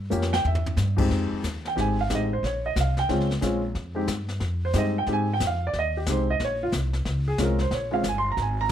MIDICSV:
0, 0, Header, 1, 5, 480
1, 0, Start_track
1, 0, Key_signature, -4, "minor"
1, 0, Tempo, 329852
1, 1618, Time_signature, 4, 2, 24, 8
1, 12685, End_track
2, 0, Start_track
2, 0, Title_t, "Grand piano"
2, 0, Program_c, 0, 0
2, 148, Note_on_c, 0, 58, 66
2, 155, Note_on_c, 0, 61, 61
2, 163, Note_on_c, 0, 65, 58
2, 169, Note_on_c, 0, 67, 74
2, 436, Note_off_c, 0, 58, 0
2, 440, Note_off_c, 0, 61, 0
2, 444, Note_off_c, 0, 65, 0
2, 447, Note_off_c, 0, 67, 0
2, 480, Note_on_c, 0, 79, 107
2, 651, Note_off_c, 0, 79, 0
2, 689, Note_on_c, 0, 76, 76
2, 1121, Note_off_c, 0, 76, 0
2, 1403, Note_on_c, 0, 41, 73
2, 1422, Note_on_c, 0, 56, 67
2, 1424, Note_on_c, 0, 60, 66
2, 1426, Note_on_c, 0, 63, 63
2, 1426, Note_on_c, 0, 67, 78
2, 2044, Note_off_c, 0, 41, 0
2, 2054, Note_off_c, 0, 56, 0
2, 2054, Note_off_c, 0, 60, 0
2, 2056, Note_off_c, 0, 63, 0
2, 2056, Note_off_c, 0, 67, 0
2, 2436, Note_on_c, 0, 79, 80
2, 2553, Note_on_c, 0, 56, 62
2, 2560, Note_on_c, 0, 60, 56
2, 2570, Note_on_c, 0, 67, 71
2, 2572, Note_on_c, 0, 63, 55
2, 2591, Note_off_c, 0, 79, 0
2, 2620, Note_on_c, 0, 80, 87
2, 2841, Note_off_c, 0, 56, 0
2, 2844, Note_off_c, 0, 60, 0
2, 2849, Note_off_c, 0, 67, 0
2, 2850, Note_off_c, 0, 63, 0
2, 2896, Note_off_c, 0, 80, 0
2, 2919, Note_on_c, 0, 77, 81
2, 3056, Note_on_c, 0, 60, 49
2, 3061, Note_on_c, 0, 56, 53
2, 3065, Note_on_c, 0, 67, 60
2, 3068, Note_on_c, 0, 63, 49
2, 3073, Note_off_c, 0, 77, 0
2, 3126, Note_on_c, 0, 75, 76
2, 3333, Note_off_c, 0, 60, 0
2, 3335, Note_off_c, 0, 56, 0
2, 3337, Note_off_c, 0, 67, 0
2, 3339, Note_off_c, 0, 63, 0
2, 3390, Note_off_c, 0, 75, 0
2, 3392, Note_on_c, 0, 72, 80
2, 3550, Note_off_c, 0, 72, 0
2, 3573, Note_on_c, 0, 73, 77
2, 3853, Note_off_c, 0, 73, 0
2, 3868, Note_on_c, 0, 75, 81
2, 4029, Note_off_c, 0, 75, 0
2, 4079, Note_on_c, 0, 77, 83
2, 4347, Note_off_c, 0, 77, 0
2, 4350, Note_on_c, 0, 79, 89
2, 4493, Note_on_c, 0, 56, 69
2, 4500, Note_on_c, 0, 60, 60
2, 4509, Note_on_c, 0, 61, 60
2, 4520, Note_on_c, 0, 65, 73
2, 4773, Note_off_c, 0, 56, 0
2, 4776, Note_off_c, 0, 60, 0
2, 4780, Note_off_c, 0, 61, 0
2, 4786, Note_off_c, 0, 65, 0
2, 4787, Note_off_c, 0, 79, 0
2, 4966, Note_on_c, 0, 56, 65
2, 4972, Note_on_c, 0, 60, 61
2, 4982, Note_on_c, 0, 61, 60
2, 4986, Note_on_c, 0, 65, 73
2, 5250, Note_off_c, 0, 56, 0
2, 5252, Note_off_c, 0, 60, 0
2, 5258, Note_off_c, 0, 61, 0
2, 5259, Note_off_c, 0, 65, 0
2, 5745, Note_on_c, 0, 56, 61
2, 5748, Note_on_c, 0, 60, 60
2, 5757, Note_on_c, 0, 63, 59
2, 5763, Note_on_c, 0, 67, 69
2, 5916, Note_off_c, 0, 56, 0
2, 5918, Note_off_c, 0, 60, 0
2, 5922, Note_off_c, 0, 63, 0
2, 5925, Note_off_c, 0, 67, 0
2, 6765, Note_on_c, 0, 72, 88
2, 6897, Note_on_c, 0, 56, 65
2, 6905, Note_on_c, 0, 60, 58
2, 6911, Note_on_c, 0, 63, 57
2, 6914, Note_on_c, 0, 67, 67
2, 6920, Note_off_c, 0, 72, 0
2, 6957, Note_on_c, 0, 75, 81
2, 7176, Note_off_c, 0, 56, 0
2, 7181, Note_off_c, 0, 60, 0
2, 7183, Note_off_c, 0, 63, 0
2, 7185, Note_off_c, 0, 67, 0
2, 7229, Note_off_c, 0, 75, 0
2, 7251, Note_on_c, 0, 79, 84
2, 7394, Note_on_c, 0, 56, 64
2, 7397, Note_on_c, 0, 63, 55
2, 7399, Note_on_c, 0, 60, 56
2, 7403, Note_off_c, 0, 79, 0
2, 7405, Note_on_c, 0, 67, 67
2, 7462, Note_on_c, 0, 80, 95
2, 7665, Note_off_c, 0, 56, 0
2, 7667, Note_off_c, 0, 60, 0
2, 7667, Note_off_c, 0, 63, 0
2, 7670, Note_off_c, 0, 67, 0
2, 7722, Note_off_c, 0, 80, 0
2, 7763, Note_on_c, 0, 79, 88
2, 7900, Note_off_c, 0, 79, 0
2, 7958, Note_on_c, 0, 77, 84
2, 8210, Note_off_c, 0, 77, 0
2, 8248, Note_on_c, 0, 74, 88
2, 8382, Note_off_c, 0, 74, 0
2, 8420, Note_on_c, 0, 75, 89
2, 8680, Note_off_c, 0, 75, 0
2, 8690, Note_on_c, 0, 67, 64
2, 8834, Note_on_c, 0, 56, 56
2, 8836, Note_off_c, 0, 67, 0
2, 8845, Note_on_c, 0, 60, 51
2, 8850, Note_on_c, 0, 63, 48
2, 8858, Note_on_c, 0, 67, 64
2, 8891, Note_on_c, 0, 72, 83
2, 9105, Note_off_c, 0, 56, 0
2, 9110, Note_off_c, 0, 60, 0
2, 9113, Note_off_c, 0, 63, 0
2, 9117, Note_off_c, 0, 67, 0
2, 9155, Note_off_c, 0, 72, 0
2, 9174, Note_on_c, 0, 75, 89
2, 9324, Note_off_c, 0, 75, 0
2, 9380, Note_on_c, 0, 73, 85
2, 9640, Note_off_c, 0, 73, 0
2, 9648, Note_on_c, 0, 65, 85
2, 9742, Note_off_c, 0, 65, 0
2, 10589, Note_on_c, 0, 68, 80
2, 10750, Note_off_c, 0, 68, 0
2, 10752, Note_on_c, 0, 56, 65
2, 10762, Note_on_c, 0, 60, 58
2, 10762, Note_on_c, 0, 61, 58
2, 10771, Note_on_c, 0, 65, 69
2, 10814, Note_on_c, 0, 70, 73
2, 11022, Note_off_c, 0, 56, 0
2, 11026, Note_off_c, 0, 60, 0
2, 11027, Note_off_c, 0, 61, 0
2, 11031, Note_off_c, 0, 65, 0
2, 11074, Note_on_c, 0, 72, 79
2, 11075, Note_off_c, 0, 70, 0
2, 11232, Note_off_c, 0, 72, 0
2, 11269, Note_on_c, 0, 73, 76
2, 11513, Note_on_c, 0, 56, 70
2, 11522, Note_on_c, 0, 60, 63
2, 11531, Note_on_c, 0, 61, 61
2, 11536, Note_on_c, 0, 65, 70
2, 11541, Note_off_c, 0, 73, 0
2, 11548, Note_on_c, 0, 77, 87
2, 11678, Note_off_c, 0, 56, 0
2, 11682, Note_off_c, 0, 60, 0
2, 11687, Note_off_c, 0, 61, 0
2, 11689, Note_off_c, 0, 65, 0
2, 11708, Note_off_c, 0, 77, 0
2, 11759, Note_on_c, 0, 80, 89
2, 11886, Note_off_c, 0, 80, 0
2, 11906, Note_on_c, 0, 84, 97
2, 12039, Note_off_c, 0, 84, 0
2, 12102, Note_on_c, 0, 82, 88
2, 12217, Note_off_c, 0, 82, 0
2, 12250, Note_on_c, 0, 80, 80
2, 12510, Note_off_c, 0, 80, 0
2, 12526, Note_on_c, 0, 82, 103
2, 12675, Note_off_c, 0, 82, 0
2, 12685, End_track
3, 0, Start_track
3, 0, Title_t, "Upright bass"
3, 0, Program_c, 1, 32
3, 0, Note_on_c, 1, 43, 82
3, 155, Note_off_c, 1, 43, 0
3, 175, Note_on_c, 1, 41, 90
3, 642, Note_off_c, 1, 41, 0
3, 648, Note_on_c, 1, 40, 82
3, 1105, Note_off_c, 1, 40, 0
3, 1114, Note_on_c, 1, 43, 93
3, 1591, Note_off_c, 1, 43, 0
3, 1609, Note_on_c, 1, 41, 77
3, 1897, Note_off_c, 1, 41, 0
3, 2084, Note_on_c, 1, 39, 76
3, 2558, Note_off_c, 1, 39, 0
3, 2570, Note_on_c, 1, 32, 79
3, 3041, Note_off_c, 1, 32, 0
3, 3055, Note_on_c, 1, 33, 85
3, 3524, Note_off_c, 1, 33, 0
3, 3533, Note_on_c, 1, 34, 78
3, 4004, Note_off_c, 1, 34, 0
3, 4012, Note_on_c, 1, 36, 82
3, 4484, Note_off_c, 1, 36, 0
3, 4500, Note_on_c, 1, 37, 80
3, 4968, Note_off_c, 1, 37, 0
3, 4977, Note_on_c, 1, 34, 88
3, 5447, Note_off_c, 1, 34, 0
3, 5453, Note_on_c, 1, 41, 77
3, 5920, Note_off_c, 1, 41, 0
3, 5929, Note_on_c, 1, 43, 82
3, 6404, Note_off_c, 1, 43, 0
3, 6416, Note_on_c, 1, 41, 83
3, 6888, Note_off_c, 1, 41, 0
3, 6896, Note_on_c, 1, 43, 91
3, 7368, Note_off_c, 1, 43, 0
3, 7375, Note_on_c, 1, 44, 80
3, 7847, Note_off_c, 1, 44, 0
3, 7857, Note_on_c, 1, 41, 79
3, 8328, Note_off_c, 1, 41, 0
3, 8344, Note_on_c, 1, 39, 75
3, 8812, Note_off_c, 1, 39, 0
3, 8828, Note_on_c, 1, 36, 84
3, 9293, Note_off_c, 1, 36, 0
3, 9304, Note_on_c, 1, 34, 79
3, 9771, Note_off_c, 1, 34, 0
3, 9780, Note_on_c, 1, 36, 84
3, 10248, Note_off_c, 1, 36, 0
3, 10268, Note_on_c, 1, 37, 78
3, 10732, Note_off_c, 1, 37, 0
3, 10745, Note_on_c, 1, 36, 90
3, 11209, Note_off_c, 1, 36, 0
3, 11216, Note_on_c, 1, 34, 77
3, 11684, Note_off_c, 1, 34, 0
3, 11692, Note_on_c, 1, 31, 86
3, 12161, Note_off_c, 1, 31, 0
3, 12179, Note_on_c, 1, 32, 83
3, 12639, Note_off_c, 1, 32, 0
3, 12685, End_track
4, 0, Start_track
4, 0, Title_t, "Muted upright bass strokes"
4, 1922, Note_on_c, 9, 29, 38
4, 2068, Note_off_c, 9, 29, 0
4, 12685, End_track
5, 0, Start_track
5, 0, Title_t, "Drums"
5, 160, Note_on_c, 9, 44, 52
5, 306, Note_off_c, 9, 44, 0
5, 325, Note_on_c, 9, 38, 55
5, 470, Note_off_c, 9, 38, 0
5, 487, Note_on_c, 9, 38, 69
5, 632, Note_off_c, 9, 38, 0
5, 651, Note_on_c, 9, 43, 62
5, 797, Note_off_c, 9, 43, 0
5, 799, Note_on_c, 9, 43, 71
5, 945, Note_off_c, 9, 43, 0
5, 965, Note_on_c, 9, 43, 82
5, 1110, Note_off_c, 9, 43, 0
5, 1118, Note_on_c, 9, 44, 53
5, 1122, Note_on_c, 9, 38, 55
5, 1263, Note_off_c, 9, 44, 0
5, 1268, Note_off_c, 9, 38, 0
5, 1427, Note_on_c, 9, 49, 70
5, 1432, Note_on_c, 9, 36, 70
5, 1572, Note_off_c, 9, 49, 0
5, 1577, Note_off_c, 9, 36, 0
5, 1612, Note_on_c, 9, 25, 42
5, 1612, Note_on_c, 9, 38, 40
5, 1757, Note_off_c, 9, 38, 0
5, 2089, Note_on_c, 9, 44, 51
5, 2093, Note_on_c, 9, 36, 17
5, 2094, Note_on_c, 9, 38, 56
5, 2235, Note_off_c, 9, 44, 0
5, 2238, Note_off_c, 9, 36, 0
5, 2239, Note_off_c, 9, 38, 0
5, 2404, Note_on_c, 9, 38, 37
5, 2550, Note_off_c, 9, 38, 0
5, 2575, Note_on_c, 9, 36, 21
5, 2583, Note_off_c, 9, 25, 0
5, 2583, Note_on_c, 9, 25, 46
5, 2583, Note_on_c, 9, 38, 42
5, 2720, Note_off_c, 9, 36, 0
5, 2728, Note_off_c, 9, 38, 0
5, 3052, Note_on_c, 9, 44, 53
5, 3056, Note_on_c, 9, 36, 22
5, 3056, Note_on_c, 9, 38, 58
5, 3197, Note_off_c, 9, 44, 0
5, 3201, Note_off_c, 9, 36, 0
5, 3202, Note_off_c, 9, 38, 0
5, 3539, Note_on_c, 9, 36, 17
5, 3548, Note_off_c, 9, 25, 0
5, 3548, Note_on_c, 9, 25, 39
5, 3548, Note_on_c, 9, 38, 40
5, 3684, Note_off_c, 9, 36, 0
5, 3694, Note_off_c, 9, 38, 0
5, 4017, Note_on_c, 9, 44, 56
5, 4018, Note_on_c, 9, 36, 26
5, 4022, Note_on_c, 9, 38, 62
5, 4163, Note_off_c, 9, 44, 0
5, 4164, Note_off_c, 9, 36, 0
5, 4167, Note_off_c, 9, 38, 0
5, 4321, Note_on_c, 9, 38, 37
5, 4467, Note_off_c, 9, 38, 0
5, 4499, Note_off_c, 9, 25, 0
5, 4499, Note_on_c, 9, 25, 44
5, 4499, Note_on_c, 9, 36, 25
5, 4499, Note_on_c, 9, 38, 42
5, 4644, Note_off_c, 9, 36, 0
5, 4645, Note_off_c, 9, 38, 0
5, 4665, Note_on_c, 9, 38, 27
5, 4810, Note_off_c, 9, 38, 0
5, 4816, Note_on_c, 9, 38, 41
5, 4962, Note_off_c, 9, 38, 0
5, 4975, Note_on_c, 9, 44, 58
5, 4979, Note_on_c, 9, 36, 20
5, 4979, Note_on_c, 9, 38, 57
5, 5120, Note_off_c, 9, 44, 0
5, 5124, Note_off_c, 9, 36, 0
5, 5125, Note_off_c, 9, 38, 0
5, 5458, Note_off_c, 9, 25, 0
5, 5458, Note_on_c, 9, 25, 43
5, 5458, Note_on_c, 9, 38, 39
5, 5459, Note_on_c, 9, 36, 22
5, 5603, Note_off_c, 9, 38, 0
5, 5605, Note_off_c, 9, 36, 0
5, 5931, Note_on_c, 9, 44, 53
5, 5935, Note_on_c, 9, 38, 57
5, 5936, Note_on_c, 9, 36, 22
5, 6077, Note_off_c, 9, 44, 0
5, 6081, Note_off_c, 9, 38, 0
5, 6082, Note_off_c, 9, 36, 0
5, 6237, Note_on_c, 9, 38, 37
5, 6382, Note_off_c, 9, 38, 0
5, 6407, Note_off_c, 9, 25, 0
5, 6407, Note_on_c, 9, 25, 42
5, 6407, Note_on_c, 9, 38, 41
5, 6414, Note_on_c, 9, 36, 22
5, 6552, Note_off_c, 9, 38, 0
5, 6560, Note_off_c, 9, 36, 0
5, 6887, Note_on_c, 9, 44, 56
5, 6892, Note_on_c, 9, 38, 57
5, 6896, Note_on_c, 9, 36, 25
5, 7033, Note_off_c, 9, 44, 0
5, 7037, Note_off_c, 9, 38, 0
5, 7042, Note_off_c, 9, 36, 0
5, 7371, Note_off_c, 9, 25, 0
5, 7371, Note_on_c, 9, 25, 44
5, 7371, Note_on_c, 9, 38, 41
5, 7378, Note_on_c, 9, 36, 22
5, 7516, Note_off_c, 9, 38, 0
5, 7524, Note_off_c, 9, 36, 0
5, 7858, Note_on_c, 9, 44, 58
5, 7862, Note_on_c, 9, 36, 20
5, 7863, Note_on_c, 9, 38, 59
5, 8004, Note_off_c, 9, 44, 0
5, 8008, Note_off_c, 9, 36, 0
5, 8008, Note_off_c, 9, 38, 0
5, 8344, Note_off_c, 9, 25, 0
5, 8344, Note_on_c, 9, 25, 42
5, 8344, Note_on_c, 9, 38, 42
5, 8345, Note_on_c, 9, 36, 21
5, 8490, Note_off_c, 9, 36, 0
5, 8490, Note_off_c, 9, 38, 0
5, 8822, Note_on_c, 9, 44, 52
5, 8827, Note_on_c, 9, 36, 18
5, 8827, Note_on_c, 9, 38, 60
5, 8968, Note_off_c, 9, 44, 0
5, 8972, Note_off_c, 9, 38, 0
5, 8973, Note_off_c, 9, 36, 0
5, 9307, Note_on_c, 9, 36, 20
5, 9309, Note_off_c, 9, 25, 0
5, 9309, Note_on_c, 9, 25, 42
5, 9309, Note_on_c, 9, 38, 43
5, 9452, Note_off_c, 9, 36, 0
5, 9455, Note_off_c, 9, 38, 0
5, 9780, Note_on_c, 9, 44, 51
5, 9785, Note_on_c, 9, 38, 58
5, 9788, Note_on_c, 9, 36, 21
5, 9926, Note_off_c, 9, 44, 0
5, 9930, Note_off_c, 9, 38, 0
5, 9933, Note_off_c, 9, 36, 0
5, 10089, Note_on_c, 9, 38, 40
5, 10235, Note_off_c, 9, 38, 0
5, 10264, Note_off_c, 9, 25, 0
5, 10264, Note_on_c, 9, 25, 44
5, 10264, Note_on_c, 9, 38, 44
5, 10265, Note_on_c, 9, 36, 22
5, 10409, Note_off_c, 9, 38, 0
5, 10411, Note_off_c, 9, 36, 0
5, 10739, Note_on_c, 9, 44, 55
5, 10743, Note_on_c, 9, 36, 21
5, 10743, Note_on_c, 9, 38, 63
5, 10884, Note_off_c, 9, 44, 0
5, 10888, Note_off_c, 9, 36, 0
5, 10889, Note_off_c, 9, 38, 0
5, 11041, Note_on_c, 9, 38, 37
5, 11186, Note_off_c, 9, 38, 0
5, 11219, Note_off_c, 9, 25, 0
5, 11219, Note_on_c, 9, 25, 48
5, 11219, Note_on_c, 9, 38, 43
5, 11220, Note_on_c, 9, 36, 17
5, 11365, Note_off_c, 9, 38, 0
5, 11366, Note_off_c, 9, 36, 0
5, 11695, Note_on_c, 9, 44, 57
5, 11699, Note_on_c, 9, 38, 61
5, 11701, Note_on_c, 9, 36, 22
5, 11840, Note_off_c, 9, 44, 0
5, 11845, Note_off_c, 9, 38, 0
5, 11846, Note_off_c, 9, 36, 0
5, 12179, Note_on_c, 9, 36, 26
5, 12184, Note_off_c, 9, 25, 0
5, 12184, Note_on_c, 9, 25, 42
5, 12184, Note_on_c, 9, 38, 42
5, 12325, Note_off_c, 9, 36, 0
5, 12330, Note_off_c, 9, 38, 0
5, 12685, Note_off_c, 9, 25, 0
5, 12685, End_track
0, 0, End_of_file